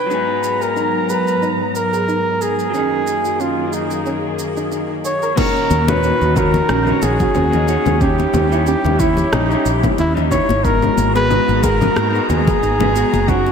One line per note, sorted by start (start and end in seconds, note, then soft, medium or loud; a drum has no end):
0.00 0.63 B4 medium
0.06 2.71 G#2 medium
0.06 2.68 F#3 medium
0.06 2.71 F#3 medium
0.06 2.70 G#3 medium
0.06 2.71 A#5 medium
0.10 2.71 B3 medium
0.10 0.27 D#4 medium
0.10 2.72 G#4 medium
0.10 shaker soft
0.43 shaker medium
0.61 0.75 G#4 medium
0.61 1.12 A#4 medium
0.61 shaker soft
0.76 0.93 D#4 medium
0.76 shaker soft
1.09 1.25 G#4 medium
1.09 1.49 B4 medium
1.09 shaker medium
1.27 shaker soft
1.42 1.58 D#4 medium
1.42 shaker soft
1.75 2.43 A#4 medium
1.75 shaker medium
1.93 2.07 G#4 medium
1.93 shaker soft
2.08 2.25 D#4 medium
2.08 shaker soft
2.41 2.57 G#4 medium
2.41 3.42 G#4 medium
2.41 shaker medium
2.59 shaker soft
2.70 5.35 F#2 medium
2.70 5.32 F#3 medium
2.70 5.33 A#3 medium
2.74 5.35 D#3 medium
2.74 5.35 A#3 medium
2.74 2.90 C#4 medium
2.74 5.35 D#4 medium
2.74 5.35 G#4 medium
2.74 shaker soft
2.78 5.36 G#4 medium
3.07 shaker medium
3.25 3.38 F#4 medium
3.25 shaker soft
3.40 3.57 C#4 medium
3.40 3.75 F4 medium
3.40 shaker soft
3.73 4.39 D#4 medium
3.73 3.89 F#4 medium
3.73 shaker medium
3.91 shaker soft
4.06 4.22 C#4 medium
4.06 shaker soft
4.39 shaker medium
4.57 4.65 D#4 loud
4.57 shaker soft
4.72 4.88 D#4 medium
4.72 shaker soft
5.05 5.22 G#4 medium
5.05 5.39 C#5 medium
5.05 shaker medium
5.22 5.37 A#4 loud
5.22 shaker soft
5.36 7.99 A#2 medium
5.36 7.99 D#3 medium
5.36 5.83 A#3 medium
5.36 10.61 C#4 medium
5.36 5.54 C#4 medium
5.36 5.84 D#4 medium
5.36 7.99 F#4 medium
5.36 5.85 F#4 medium
5.36 5.90 A#4 loud
5.36 5.85 C#5 medium
5.36 kick loud
5.36 crash loud
5.36 muted conga medium
5.36 low conga medium
5.36 shaker soft
5.56 shaker soft
5.70 6.11 D#2 loud
5.70 high conga loud
5.70 shaker medium
5.86 6.32 A#2 medium
5.86 6.33 D#4 medium
5.86 6.02 F#4 medium
5.86 6.33 F#4 medium
5.86 6.36 B4 loud
5.86 6.34 C#5 medium
5.86 muted conga medium
5.86 low conga medium
5.86 shaker soft
6.03 6.21 C#4 medium
6.03 shaker soft
6.22 6.61 D#2 medium
6.22 high conga medium
6.22 shaker soft
6.35 6.82 A#3 medium
6.35 6.83 D#4 medium
6.35 6.53 F#4 medium
6.35 6.83 F#4 medium
6.35 7.04 A#4 medium
6.35 6.84 C#5 medium
6.35 kick loud
6.35 low conga medium
6.35 shaker medium
6.54 muted conga medium
6.54 low conga medium
6.54 shaker soft
6.69 6.91 A#1 medium
6.69 6.86 C#4 medium
6.69 cross-stick medium
6.69 high conga medium
6.69 shaker soft
6.85 7.31 A#3 medium
6.85 7.31 D#4 medium
6.85 7.32 F#4 medium
6.85 7.32 C#5 loud
6.85 low conga medium
6.85 shaker soft
7.02 7.24 A#1 medium
7.02 8.03 G#4 loud
7.02 muted conga loud
7.02 shaker medium
7.20 7.34 F#4 medium
7.20 kick loud
7.20 high conga medium
7.20 low conga medium
7.20 shaker soft
7.35 7.76 D#2 medium
7.35 7.52 C#4 medium
7.35 low conga medium
7.35 shaker soft
7.51 7.64 A#3 medium
7.51 7.64 D#4 medium
7.51 7.65 F#4 medium
7.51 7.66 D#5 medium
7.51 low conga medium
7.51 shaker soft
7.66 7.97 A#3 medium
7.66 7.97 D#4 medium
7.66 7.84 F#4 medium
7.66 7.98 F#4 medium
7.66 7.99 C#5 medium
7.66 muted conga medium
7.66 shaker medium
7.86 8.26 D#2 medium
7.86 high conga loud
7.86 low conga medium
7.86 shaker soft
7.99 8.47 G3 medium
7.99 8.17 C#4 medium
7.99 8.47 D#4 medium
7.99 8.48 E4 medium
7.99 8.66 G4 loud
7.99 10.63 G4 medium
7.99 8.49 C#5 medium
7.99 kick loud
7.99 shaker soft
8.19 muted conga medium
8.19 shaker soft
8.34 8.74 D#2 loud
8.34 high conga medium
8.34 low conga medium
8.34 shaker medium
8.50 8.95 G3 medium
8.50 8.96 D#4 medium
8.50 8.66 E4 medium
8.50 8.97 E4 medium
8.50 8.97 C#5 medium
8.50 shaker soft
8.67 8.84 C#4 medium
8.67 9.01 G4 medium
8.67 shaker soft
8.85 9.24 D#2 medium
8.85 muted conga medium
8.85 high conga medium
8.85 low conga medium
8.85 shaker soft
8.98 9.46 D#3 medium
8.98 9.46 G3 medium
8.98 9.34 E4 medium
8.98 9.16 E4 medium
8.98 9.47 E4 medium
8.98 kick loud
8.98 shaker medium
9.02 9.48 C#5 medium
9.17 low conga medium
9.17 shaker soft
9.33 9.55 A#1 medium
9.33 9.49 C#4 medium
9.33 9.72 D#4 medium
9.33 cross-stick medium
9.33 muted conga medium
9.33 high conga medium
9.33 low conga medium
9.33 shaker soft
9.49 9.94 G3 loud
9.49 9.95 D#4 medium
9.49 9.96 E4 medium
9.49 9.96 C#5 loud
9.49 shaker soft
9.66 9.88 A#1 medium
9.66 shaker medium
9.83 9.98 E4 medium
9.83 kick loud
9.83 high conga medium
9.83 low conga medium
9.83 shaker soft
9.98 10.39 D#2 medium
9.98 10.16 C#4 medium
9.98 10.14 E4 medium
9.98 muted conga medium
9.98 shaker soft
10.15 10.27 G3 medium
10.15 10.28 D#4 medium
10.15 10.29 E4 medium
10.15 10.29 D#5 medium
10.15 low conga medium
10.15 shaker soft
10.30 10.60 G3 medium
10.30 10.61 D#4 medium
10.30 10.48 E4 medium
10.30 10.62 E4 medium
10.30 10.65 C#5 medium
10.30 10.62 C#5 medium
10.30 kick medium
10.30 low conga medium
10.30 shaker medium
10.49 10.89 G#1 medium
10.49 muted conga medium
10.49 high conga medium
10.49 shaker soft
10.63 11.11 G#3 medium
10.63 13.26 G#3 medium
10.63 11.11 B3 medium
10.63 13.26 B3 medium
10.63 10.81 D#4 medium
10.63 13.26 F#4 medium
10.63 11.12 F#4 medium
10.63 11.15 A#4 loud
10.63 11.13 A#4 medium
10.63 13.52 A#5 medium
10.63 kick loud
10.63 shaker soft
10.82 low conga medium
10.82 shaker soft
10.97 11.38 G#1 loud
10.97 high conga medium
10.97 shaker medium
11.14 11.59 G#3 medium
11.14 11.60 B3 medium
11.14 11.61 F#4 medium
11.14 11.29 G#4 medium
11.14 11.65 B4 loud
11.14 11.61 B4 medium
11.14 muted conga soft
11.14 shaker soft
11.30 11.48 D#4 medium
11.30 low conga medium
11.30 shaker soft
11.48 11.88 G#1 medium
11.48 high conga medium
11.48 shaker soft
11.61 12.09 G#3 medium
11.61 12.10 B3 medium
11.61 12.11 F#4 medium
11.61 11.80 G#4 medium
11.61 12.29 A#4 loud
11.61 kick loud
11.61 muted conga medium
11.61 shaker medium
11.66 12.11 A#4 medium
11.81 low conga medium
11.81 shaker soft
11.96 12.19 G#2 medium
11.96 12.13 D#4 medium
11.96 cross-stick medium
11.96 high conga medium
11.96 shaker soft
12.13 12.58 G#3 loud
12.13 12.59 B3 medium
12.13 12.59 F#4 medium
12.13 12.60 A#4 loud
12.13 shaker soft
12.30 12.52 D#2 medium
12.30 13.30 G#4 loud
12.30 muted conga soft
12.30 low conga medium
12.30 shaker medium
12.47 12.61 G#4 medium
12.47 kick loud
12.47 high conga medium
12.47 low conga medium
12.47 shaker soft
12.63 13.03 G#1 medium
12.63 12.80 D#4 medium
12.63 shaker soft
12.79 12.91 G#3 medium
12.79 12.92 B3 medium
12.79 12.93 F#4 medium
12.79 12.93 B4 medium
12.79 muted conga medium
12.79 low conga medium
12.79 shaker soft
12.93 13.24 G#3 medium
12.93 13.25 B3 medium
12.93 13.25 F#4 medium
12.93 13.12 G#4 medium
12.93 13.26 A#4 medium
12.93 shaker medium
13.14 13.52 F#1 medium
13.14 high conga loud
13.14 shaker soft
13.27 13.52 F#3 medium
13.27 13.52 G#3 medium
13.27 13.45 C#4 medium
13.27 13.52 D#4 medium
13.27 13.52 F#4 loud
13.27 13.52 F#4 medium
13.27 13.52 G#4 medium
13.27 kick loud
13.27 low conga medium
13.27 shaker soft
13.31 13.52 A#4 loud
13.46 muted conga soft
13.46 shaker soft